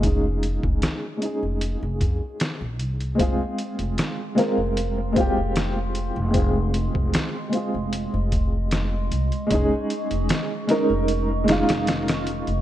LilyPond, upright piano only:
\new Staff \with { instrumentName = "Upright piano" } { \time 4/4 \key f \minor \tempo 4 = 76 <aes des' ees' aes'>4. <aes des' ees' aes'>2~ <aes des' ees' aes'>8 | <aes c' f' aes'>4. <aes c' f' bes'>8 r8 <aes c' f' g'>4. | <aes c' f' aes'>4. <aes c' f' aes'>2~ <aes c' f' aes'>8 | <aes des' ees' aes'>4. <aes des' ees' bes'>8 r8 <aes des' ees' f'>4. | }